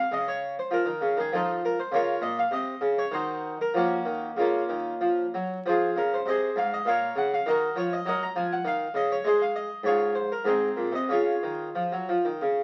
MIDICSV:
0, 0, Header, 1, 2, 480
1, 0, Start_track
1, 0, Key_signature, -5, "minor"
1, 0, Tempo, 599401
1, 95, Time_signature, 3, 2, 24, 8
1, 2492, Tempo, 631579
1, 4427, Key_signature, -5, "major"
1, 4892, Tempo, 596421
1, 8252, Tempo, 659341
1, 9847, End_track
2, 0, Start_track
2, 0, Title_t, "Harpsichord"
2, 0, Program_c, 0, 6
2, 0, Note_on_c, 0, 77, 77
2, 92, Note_on_c, 0, 49, 62
2, 102, Note_off_c, 0, 77, 0
2, 106, Note_on_c, 0, 75, 95
2, 224, Note_off_c, 0, 75, 0
2, 224, Note_on_c, 0, 73, 87
2, 427, Note_off_c, 0, 73, 0
2, 442, Note_off_c, 0, 49, 0
2, 473, Note_on_c, 0, 72, 80
2, 567, Note_on_c, 0, 53, 62
2, 586, Note_off_c, 0, 72, 0
2, 586, Note_on_c, 0, 70, 92
2, 685, Note_on_c, 0, 51, 65
2, 687, Note_off_c, 0, 53, 0
2, 806, Note_off_c, 0, 51, 0
2, 811, Note_on_c, 0, 49, 71
2, 931, Note_off_c, 0, 49, 0
2, 938, Note_on_c, 0, 51, 70
2, 945, Note_off_c, 0, 70, 0
2, 958, Note_on_c, 0, 68, 93
2, 1055, Note_off_c, 0, 51, 0
2, 1060, Note_on_c, 0, 53, 76
2, 1071, Note_off_c, 0, 68, 0
2, 1076, Note_on_c, 0, 69, 105
2, 1084, Note_on_c, 0, 63, 78
2, 1085, Note_on_c, 0, 65, 76
2, 1276, Note_off_c, 0, 69, 0
2, 1299, Note_off_c, 0, 63, 0
2, 1299, Note_off_c, 0, 65, 0
2, 1322, Note_on_c, 0, 70, 102
2, 1406, Note_off_c, 0, 53, 0
2, 1433, Note_off_c, 0, 70, 0
2, 1438, Note_on_c, 0, 72, 98
2, 1535, Note_on_c, 0, 49, 72
2, 1549, Note_off_c, 0, 72, 0
2, 1551, Note_on_c, 0, 73, 111
2, 1560, Note_on_c, 0, 65, 84
2, 1560, Note_on_c, 0, 70, 83
2, 1706, Note_off_c, 0, 49, 0
2, 1746, Note_off_c, 0, 73, 0
2, 1770, Note_off_c, 0, 65, 0
2, 1770, Note_off_c, 0, 70, 0
2, 1772, Note_on_c, 0, 46, 74
2, 1782, Note_on_c, 0, 75, 108
2, 1896, Note_off_c, 0, 75, 0
2, 1913, Note_on_c, 0, 77, 96
2, 1942, Note_off_c, 0, 46, 0
2, 2011, Note_on_c, 0, 48, 71
2, 2021, Note_off_c, 0, 77, 0
2, 2027, Note_on_c, 0, 75, 108
2, 2183, Note_off_c, 0, 48, 0
2, 2251, Note_on_c, 0, 49, 79
2, 2326, Note_off_c, 0, 75, 0
2, 2389, Note_on_c, 0, 73, 99
2, 2425, Note_off_c, 0, 49, 0
2, 2493, Note_on_c, 0, 51, 74
2, 2502, Note_off_c, 0, 73, 0
2, 2508, Note_on_c, 0, 72, 114
2, 2515, Note_on_c, 0, 63, 83
2, 2517, Note_on_c, 0, 66, 78
2, 2802, Note_off_c, 0, 72, 0
2, 2834, Note_off_c, 0, 63, 0
2, 2835, Note_off_c, 0, 51, 0
2, 2835, Note_off_c, 0, 66, 0
2, 2872, Note_on_c, 0, 70, 93
2, 2970, Note_on_c, 0, 53, 63
2, 2980, Note_off_c, 0, 70, 0
2, 2986, Note_on_c, 0, 66, 96
2, 2993, Note_on_c, 0, 61, 69
2, 2994, Note_on_c, 0, 58, 72
2, 3144, Note_off_c, 0, 53, 0
2, 3208, Note_on_c, 0, 51, 65
2, 3383, Note_off_c, 0, 51, 0
2, 3390, Note_off_c, 0, 66, 0
2, 3435, Note_off_c, 0, 58, 0
2, 3435, Note_off_c, 0, 61, 0
2, 3445, Note_on_c, 0, 49, 60
2, 3461, Note_on_c, 0, 65, 64
2, 3471, Note_on_c, 0, 58, 48
2, 3471, Note_on_c, 0, 61, 47
2, 3622, Note_off_c, 0, 49, 0
2, 3692, Note_on_c, 0, 51, 61
2, 3868, Note_off_c, 0, 51, 0
2, 3934, Note_on_c, 0, 53, 63
2, 4113, Note_off_c, 0, 53, 0
2, 4163, Note_off_c, 0, 58, 0
2, 4163, Note_off_c, 0, 61, 0
2, 4186, Note_on_c, 0, 54, 53
2, 4188, Note_off_c, 0, 65, 0
2, 4361, Note_off_c, 0, 54, 0
2, 4427, Note_on_c, 0, 53, 66
2, 4438, Note_on_c, 0, 72, 87
2, 4449, Note_on_c, 0, 68, 63
2, 4451, Note_on_c, 0, 65, 66
2, 4596, Note_off_c, 0, 53, 0
2, 4656, Note_on_c, 0, 49, 60
2, 4658, Note_off_c, 0, 65, 0
2, 4658, Note_off_c, 0, 68, 0
2, 4668, Note_off_c, 0, 72, 0
2, 4669, Note_on_c, 0, 70, 76
2, 4782, Note_off_c, 0, 70, 0
2, 4792, Note_on_c, 0, 72, 74
2, 4825, Note_off_c, 0, 49, 0
2, 4883, Note_on_c, 0, 48, 62
2, 4899, Note_on_c, 0, 75, 91
2, 4901, Note_off_c, 0, 72, 0
2, 4908, Note_on_c, 0, 68, 67
2, 4910, Note_on_c, 0, 72, 73
2, 5061, Note_off_c, 0, 48, 0
2, 5103, Note_off_c, 0, 75, 0
2, 5125, Note_on_c, 0, 44, 71
2, 5127, Note_off_c, 0, 68, 0
2, 5128, Note_off_c, 0, 72, 0
2, 5138, Note_on_c, 0, 77, 86
2, 5259, Note_off_c, 0, 77, 0
2, 5267, Note_on_c, 0, 75, 95
2, 5304, Note_off_c, 0, 44, 0
2, 5362, Note_on_c, 0, 46, 72
2, 5378, Note_on_c, 0, 77, 101
2, 5384, Note_off_c, 0, 75, 0
2, 5387, Note_on_c, 0, 70, 80
2, 5389, Note_on_c, 0, 73, 81
2, 5540, Note_off_c, 0, 46, 0
2, 5582, Note_off_c, 0, 77, 0
2, 5606, Note_off_c, 0, 70, 0
2, 5606, Note_on_c, 0, 49, 73
2, 5607, Note_off_c, 0, 73, 0
2, 5623, Note_on_c, 0, 78, 103
2, 5739, Note_off_c, 0, 78, 0
2, 5751, Note_on_c, 0, 77, 104
2, 5781, Note_off_c, 0, 49, 0
2, 5851, Note_on_c, 0, 51, 74
2, 5862, Note_off_c, 0, 77, 0
2, 5866, Note_on_c, 0, 75, 103
2, 5879, Note_on_c, 0, 66, 80
2, 5881, Note_on_c, 0, 70, 84
2, 6024, Note_off_c, 0, 51, 0
2, 6090, Note_off_c, 0, 66, 0
2, 6090, Note_off_c, 0, 70, 0
2, 6090, Note_on_c, 0, 53, 69
2, 6099, Note_off_c, 0, 75, 0
2, 6103, Note_on_c, 0, 73, 97
2, 6218, Note_off_c, 0, 73, 0
2, 6228, Note_on_c, 0, 75, 94
2, 6264, Note_off_c, 0, 53, 0
2, 6328, Note_on_c, 0, 54, 72
2, 6341, Note_off_c, 0, 75, 0
2, 6342, Note_on_c, 0, 78, 101
2, 6354, Note_on_c, 0, 75, 90
2, 6355, Note_on_c, 0, 70, 87
2, 6456, Note_off_c, 0, 75, 0
2, 6457, Note_off_c, 0, 70, 0
2, 6458, Note_off_c, 0, 78, 0
2, 6468, Note_on_c, 0, 82, 121
2, 6502, Note_off_c, 0, 54, 0
2, 6572, Note_on_c, 0, 53, 78
2, 6580, Note_off_c, 0, 82, 0
2, 6587, Note_on_c, 0, 80, 124
2, 6697, Note_off_c, 0, 80, 0
2, 6708, Note_on_c, 0, 78, 105
2, 6741, Note_off_c, 0, 53, 0
2, 6804, Note_on_c, 0, 51, 83
2, 6816, Note_off_c, 0, 78, 0
2, 6824, Note_on_c, 0, 77, 119
2, 6974, Note_off_c, 0, 51, 0
2, 7016, Note_off_c, 0, 77, 0
2, 7043, Note_on_c, 0, 49, 75
2, 7060, Note_on_c, 0, 75, 109
2, 7169, Note_off_c, 0, 75, 0
2, 7185, Note_on_c, 0, 73, 104
2, 7213, Note_off_c, 0, 49, 0
2, 7286, Note_on_c, 0, 56, 77
2, 7291, Note_off_c, 0, 73, 0
2, 7305, Note_on_c, 0, 75, 111
2, 7311, Note_on_c, 0, 68, 86
2, 7311, Note_on_c, 0, 72, 84
2, 7407, Note_off_c, 0, 68, 0
2, 7407, Note_off_c, 0, 72, 0
2, 7411, Note_off_c, 0, 75, 0
2, 7425, Note_on_c, 0, 77, 95
2, 7532, Note_off_c, 0, 77, 0
2, 7538, Note_on_c, 0, 75, 106
2, 7630, Note_off_c, 0, 56, 0
2, 7735, Note_off_c, 0, 75, 0
2, 7761, Note_on_c, 0, 44, 69
2, 7778, Note_on_c, 0, 73, 97
2, 7786, Note_on_c, 0, 65, 74
2, 7788, Note_on_c, 0, 68, 74
2, 8002, Note_off_c, 0, 65, 0
2, 8003, Note_off_c, 0, 68, 0
2, 8014, Note_off_c, 0, 73, 0
2, 8015, Note_on_c, 0, 72, 93
2, 8116, Note_off_c, 0, 44, 0
2, 8134, Note_off_c, 0, 72, 0
2, 8151, Note_on_c, 0, 70, 84
2, 8252, Note_on_c, 0, 44, 72
2, 8264, Note_off_c, 0, 70, 0
2, 8264, Note_on_c, 0, 68, 85
2, 8273, Note_on_c, 0, 60, 72
2, 8274, Note_on_c, 0, 63, 73
2, 8419, Note_off_c, 0, 44, 0
2, 8485, Note_on_c, 0, 46, 58
2, 8556, Note_off_c, 0, 68, 0
2, 8588, Note_off_c, 0, 60, 0
2, 8589, Note_off_c, 0, 63, 0
2, 8597, Note_off_c, 0, 46, 0
2, 8598, Note_on_c, 0, 48, 57
2, 8621, Note_on_c, 0, 75, 76
2, 8714, Note_off_c, 0, 48, 0
2, 8721, Note_on_c, 0, 49, 58
2, 8732, Note_off_c, 0, 75, 0
2, 8734, Note_on_c, 0, 73, 75
2, 8742, Note_on_c, 0, 65, 55
2, 8743, Note_on_c, 0, 68, 54
2, 8896, Note_off_c, 0, 49, 0
2, 8969, Note_on_c, 0, 51, 53
2, 9143, Note_off_c, 0, 51, 0
2, 9203, Note_on_c, 0, 53, 51
2, 9320, Note_off_c, 0, 53, 0
2, 9328, Note_on_c, 0, 54, 50
2, 9443, Note_off_c, 0, 54, 0
2, 9449, Note_on_c, 0, 53, 60
2, 9553, Note_off_c, 0, 73, 0
2, 9564, Note_off_c, 0, 53, 0
2, 9567, Note_on_c, 0, 51, 54
2, 9673, Note_off_c, 0, 65, 0
2, 9673, Note_off_c, 0, 68, 0
2, 9684, Note_off_c, 0, 51, 0
2, 9687, Note_on_c, 0, 49, 55
2, 9847, Note_off_c, 0, 49, 0
2, 9847, End_track
0, 0, End_of_file